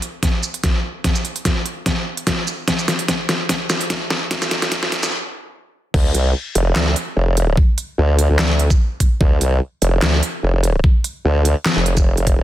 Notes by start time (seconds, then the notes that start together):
0.02 closed hi-hat
0.23 kick, snare, closed hi-hat
0.43 shaker
0.54 closed hi-hat
0.64 kick, snare, closed hi-hat
1.04 kick, snare, closed hi-hat
1.15 shaker
1.25 closed hi-hat
1.36 closed hi-hat
1.45 kick, snare, closed hi-hat
1.66 closed hi-hat
1.86 kick, snare, closed hi-hat
2.17 closed hi-hat
2.27 kick, snare, closed hi-hat
2.47 shaker
2.68 kick, snare, closed hi-hat
2.79 shaker
2.88 snare, closed hi-hat
2.99 closed hi-hat
3.08 kick, snare, closed hi-hat
3.29 snare, closed hi-hat
3.49 kick, snare, closed hi-hat
3.70 snare, shaker
3.81 closed hi-hat
3.90 kick, snare, closed hi-hat
4.10 snare
4.31 kick, snare, closed hi-hat
4.42 snare, shaker
4.51 snare, closed hi-hat
4.62 snare, closed hi-hat
4.72 kick, snare, closed hi-hat
4.83 snare
4.92 snare, closed hi-hat
5.03 snare, shaker
5.94 D2, kick, crash
6.15 C2, closed hi-hat
6.55 F1, closed hi-hat
6.76 D2, snare, clap
6.96 closed hi-hat
7.17 F1
7.37 closed hi-hat
7.57 kick
7.78 closed hi-hat
7.98 D2
8.19 closed hi-hat
8.30 D2
8.39 snare, clap
8.59 closed hi-hat
8.70 kick, shaker
9.00 kick, closed hi-hat
9.21 D2, kick
9.41 C2, closed hi-hat
9.82 F1, closed hi-hat
10.02 D2, snare, clap
10.23 closed hi-hat
10.43 F1
10.64 closed hi-hat
10.84 kick
11.04 closed hi-hat
11.25 D2
11.45 closed hi-hat
11.66 snare, clap
11.77 F1
11.86 closed hi-hat
11.97 kick, shaker
12.17 closed hi-hat
12.27 kick, closed hi-hat
12.38 D#1